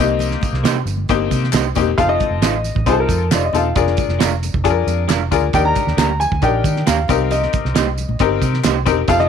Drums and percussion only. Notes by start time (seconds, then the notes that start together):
0.19 closed hi-hat, tambourine, muted conga, low conga
0.31 snare
0.41 kick, closed hi-hat, tambourine, muted conga, high conga
0.54 snare
0.64 snare, clap, closed hi-hat, tambourine, muted conga
0.75 high conga
0.87 closed hi-hat, tambourine, muted conga, low conga
0.97 high conga
1.08 kick, closed hi-hat, tambourine, muted conga
1.31 kick, closed hi-hat, tambourine, muted conga, high conga
1.44 snare
1.53 snare, clap, closed hi-hat, tambourine, high conga
1.75 kick, closed hi-hat, tambourine, muted conga, low conga
1.98 kick, closed hi-hat, tambourine, muted conga, low conga
2.20 kick, closed hi-hat, muted conga, high conga
2.42 snare, clap, closed hi-hat, tambourine
2.53 high conga
2.64 closed hi-hat, tambourine, muted conga, low conga
2.75 kick, high conga
2.86 kick, closed hi-hat, tambourine
3.09 kick, closed hi-hat, tambourine, muted conga, high conga
3.31 snare, clap, closed hi-hat, tambourine, high conga
3.53 closed hi-hat, tambourine, muted conga, low conga
3.76 kick, closed hi-hat, tambourine, muted conga, low conga
3.87 snare
3.97 kick, closed hi-hat, tambourine, muted conga, high conga
4.09 snare
4.20 snare, clap, closed hi-hat, tambourine
4.32 high conga
4.43 closed hi-hat, tambourine, muted conga, low conga
4.54 kick, high conga
4.65 kick, closed hi-hat, tambourine
4.88 closed hi-hat, tambourine, high conga
5.09 snare, clap, closed hi-hat, tambourine, muted conga, high conga
5.32 kick, closed hi-hat, tambourine, low conga
5.53 kick, closed hi-hat, tambourine, low conga
5.75 kick, closed hi-hat, tambourine, muted conga, high conga
5.88 snare
5.98 snare, clap, closed hi-hat, tambourine
6.09 high conga
6.21 closed hi-hat, tambourine, muted conga, low conga
6.31 kick, high conga
6.42 kick, closed hi-hat, tambourine
6.64 kick, closed hi-hat, tambourine, high conga
6.76 snare
6.87 snare, clap, closed hi-hat, tambourine, high conga
7.08 kick, closed hi-hat, tambourine, low conga
7.31 closed hi-hat, tambourine, muted conga, low conga
7.43 snare
7.53 kick, closed hi-hat, muted conga, high conga
7.65 snare
7.75 snare, clap, closed hi-hat, tambourine
7.86 high conga
7.98 closed hi-hat, tambourine, muted conga, low conga
8.09 high conga
8.19 kick, closed hi-hat, tambourine, muted conga
8.42 kick, closed hi-hat, tambourine, high conga
8.54 snare
8.64 snare, clap, closed hi-hat, tambourine, muted conga, high conga
8.86 kick, closed hi-hat, tambourine, low conga
9.08 kick, closed hi-hat, tambourine, muted conga, low conga
9.20 snare